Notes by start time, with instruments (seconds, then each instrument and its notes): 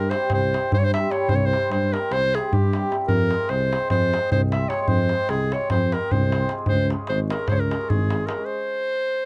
Already playing: tuba G2, hammered dulcimer G3
0.00 clarinet A#4, darbuka tek
0.10 hammered dulcimer G3 C4 E4 G4, clarinet C5, darbuka tek
0.22 darbuka tek
0.30 tuba C2, clarinet C5, darbuka tek, darbuka dum
0.42 darbuka tek
0.53 hammered dulcimer G3 C4 E4 G4, darbuka tek
0.64 darbuka tek
0.72 tuba G2, clarinet C5, darbuka dum
0.79 clarinet C#5
0.85 clarinet C5
0.93 hammered dulcimer G3 C4 E4 G4, clarinet E5, darbuka tek
1.10 hammered dulcimer G3 C4 E4 G4, clarinet C#5, darbuka tek
1.22 darbuka tek
1.29 tuba C2, clarinet C5, darbuka dum
1.35 clarinet C#5
1.42 darbuka tek
1.46 clarinet C5
1.51 hammered dulcimer G3 C4 E4 G4, darbuka tek
1.62 darbuka tek
1.71 tuba G2, clarinet C5, darbuka tek
1.83 darbuka tek
1.92 hammered dulcimer G3 C4 E4 G4, clarinet A#4, darbuka tek
2.02 darbuka tek
2.11 tuba C2, clarinet C5, darbuka tek
2.23 darbuka tek
2.34 hammered dulcimer G3 C4 E4 G4, clarinet G#4, darbuka tek
2.53 tuba G2, clarinet G4, darbuka dum
2.64 darbuka tek
2.73 hammered dulcimer G3 C4 E4 G4, darbuka tek
2.83 darbuka tek
2.91 hammered dulcimer G3 C4 E4 G4, darbuka tek
3.01 darbuka tek
3.08 tuba F2, clarinet A#4, darbuka dum
3.20 darbuka tek
3.31 hammered dulcimer G#3 C4 F4 G#4, darbuka tek
3.49 tuba C2, clarinet C5, darbuka tek
3.61 darbuka tek
3.71 hammered dulcimer G#3 C4 F4 G#4, darbuka tek
3.82 darbuka tek
3.90 tuba F2, clarinet C5, darbuka tek, darbuka dum
4.02 darbuka tek
4.13 hammered dulcimer G#3 C4 F4 G#4, darbuka tek
4.32 tuba C2, clarinet C5, darbuka dum
4.52 hammered dulcimer G#3 C4 F4 G#4, clarinet E5, darbuka tek
4.69 hammered dulcimer G#3 C4 F4, clarinet C#5, darbuka tek
4.73 hammered dulcimer G#4
4.79 clarinet C#5, darbuka tek
4.88 tuba F2, clarinet C5, darbuka dum
4.99 darbuka tek
5.09 hammered dulcimer G#3 C4 F4 G#4, darbuka tek
5.29 tuba C2, clarinet G#4, darbuka tek
5.40 darbuka tek
5.52 hammered dulcimer G#3 C4 F4 G#4, clarinet C#5, darbuka tek
5.61 darbuka tek
5.70 tuba F2, clarinet C5, darbuka tek, darbuka dum
5.92 hammered dulcimer G#3 C4 F4 G#4, clarinet A#4, darbuka tek
6.01 darbuka tek
6.11 tuba C2, clarinet C5, darbuka dum
6.32 hammered dulcimer G#3 C4 F4 G#4, darbuka tek
6.49 hammered dulcimer G#3 C4 F4 G#4, darbuka tek
6.58 darbuka tek
6.66 tuba C#2, clarinet C5, darbuka dum
6.79 darbuka tek
6.90 hammered dulcimer G#3 C#4 F4 G#4, darbuka tek
7.07 tuba G#1, clarinet C5, darbuka tek
7.20 darbuka tek
7.30 hammered dulcimer G#3 C#4 F4 G#4, clarinet A#4, darbuka tek
7.39 darbuka tek
7.48 tuba C#2, clarinet C5 C#5, darbuka tek, darbuka dum
7.54 clarinet C5
7.60 clarinet A#4, darbuka tek
7.70 hammered dulcimer G#3 C#4 F4 G#4, darbuka tek
7.81 darbuka tek
7.90 tuba G#1, clarinet G#4, darbuka dum
8.10 hammered dulcimer G#3 C#4 F4 G#4, darbuka tek
8.27 hammered dulcimer G#3 C#4 F4 G#4, clarinet A#4, darbuka tek
8.38 darbuka tek
8.45 clarinet C5